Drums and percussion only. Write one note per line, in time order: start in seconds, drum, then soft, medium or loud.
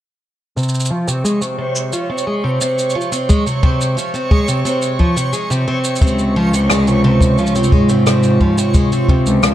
0.57 shaker soft
0.63 shaker soft
0.68 shaker soft
0.74 shaker soft
0.80 shaker soft
0.85 shaker soft
1.08 shaker medium
1.25 shaker medium
1.42 shaker soft
1.75 shaker medium
1.93 shaker medium
2.18 shaker soft
2.61 shaker medium
2.78 shaker soft
2.90 shaker soft
3.01 shaker soft
3.12 shaker medium
3.30 kick medium
3.30 shaker medium
3.47 shaker soft
3.63 kick medium
3.81 shaker medium
3.98 shaker medium
4.15 shaker soft
4.31 kick medium
4.48 shaker medium
4.66 shaker medium
4.82 shaker soft
5.00 kick medium
5.17 shaker medium
5.33 shaker medium
5.51 shaker soft
5.84 shaker medium
5.96 shaker medium
6.01 kick loud
6.01 shaker medium
6.07 shaker soft
6.19 shaker soft
6.54 shaker medium
6.70 cross-stick medium
6.70 shaker medium
6.87 shaker soft
7.21 kick medium
7.21 shaker medium
7.38 shaker soft
7.46 shaker soft
7.55 shaker soft
7.64 shaker medium
7.72 kick medium
7.89 shaker medium
8.07 cross-stick medium
8.07 shaker medium
8.23 shaker soft
8.40 kick medium
8.58 shaker medium
8.74 kick medium
8.74 shaker medium
8.92 shaker soft
9.09 kick medium
9.26 shaker medium
9.43 cross-stick loud
9.43 shaker medium